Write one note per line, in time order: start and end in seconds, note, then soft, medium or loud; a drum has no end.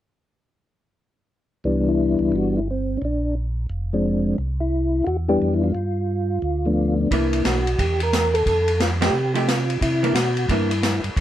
1.64 2.16 C2 medium
1.64 2.60 E3 soft
1.64 2.60 G3 soft
1.64 2.60 B3 soft
1.64 2.60 D4 soft
1.88 2.36 E4 medium
2.19 2.32 C#2 medium
2.32 2.97 G1 medium
2.32 2.55 F#4 medium
2.57 2.68 E4 medium
2.71 2.99 C4 medium
2.97 3.02 C#4 medium
3.02 3.66 A#1 medium
3.02 3.35 D4 medium
3.70 4.34 F1 medium
3.93 4.36 F3 medium
3.93 4.36 G#3 soft
3.93 4.37 C4 soft
3.93 4.37 D4 medium
4.38 5.03 C2 medium
4.60 5.05 E4 medium
5.04 5.38 E2 medium
5.04 5.07 F4 medium
5.04 5.17 F#4 medium
5.28 5.72 E3 medium
5.28 5.72 G3 medium
5.28 5.72 B3 medium
5.28 5.72 D4 medium
5.28 5.54 G4 loud
5.42 5.73 F2 medium
5.54 5.62 E4 medium
5.64 6.95 F4 loud
5.75 6.39 G2 medium
6.42 7.07 D2 medium
6.66 7.08 F3 medium
6.66 7.09 A3 medium
6.66 7.09 B3 soft
6.66 7.00 D4 medium
7.01 7.11 D4 medium
7.11 7.42 C2 medium
7.11 7.62 E3 medium
7.11 7.62 A#3 medium
7.11 7.63 D4 medium
7.11 7.46 E4 medium
7.11 kick soft
7.11 ride medium
7.33 ride soft
7.45 7.76 B1 medium
7.45 7.80 F#4 medium
7.45 snare medium
7.45 hi-hat pedal soft
7.45 ride medium
7.67 ride soft
7.79 8.43 E2 medium
7.79 8.01 G4 medium
7.79 kick soft
7.79 ride medium
8.00 8.36 A#4 loud
8.00 ride soft
8.13 snare medium
8.13 hi-hat pedal medium
8.13 ride medium
8.34 8.81 A4 loud
8.34 ride soft
8.46 9.10 F2 medium
8.46 kick soft
8.46 ride soft
8.68 ride soft
8.80 8.91 F4 medium
8.80 snare medium
8.80 hi-hat pedal soft
8.80 ride medium
9.01 9.12 F3 medium
9.01 9.13 A3 medium
9.01 9.13 D#4 medium
9.01 9.13 G4 medium
9.01 9.33 G4 loud
9.01 snare medium
9.01 ride medium
9.13 9.78 C3 medium
9.34 9.46 F3 medium
9.34 9.46 A3 medium
9.34 9.47 D#4 medium
9.34 9.47 G4 medium
9.34 ride soft
9.48 9.80 F4 medium
9.48 snare medium
9.48 hi-hat pedal medium
9.48 ride medium
9.70 ride soft
9.81 10.13 C3 medium
9.81 10.13 E4 medium
9.81 kick soft
9.81 ride medium
10.03 10.14 E3 medium
10.03 10.15 A#3 medium
10.03 10.15 D4 medium
10.03 ride soft
10.14 10.46 B2 medium
10.14 10.50 F#4 medium
10.14 snare medium
10.14 hi-hat pedal soft
10.14 ride medium
10.37 ride soft
10.48 11.00 G2 medium
10.48 10.69 E3 soft
10.48 10.69 A#3 medium
10.48 10.69 D4 medium
10.48 11.01 E4 medium
10.48 kick soft
10.48 ride medium
10.71 ride soft
10.83 snare medium
10.83 hi-hat pedal medium
10.83 ride medium
11.04 11.10 G2 soft
11.04 ride soft
11.16 11.21 E2 medium
11.16 kick soft
11.16 ride medium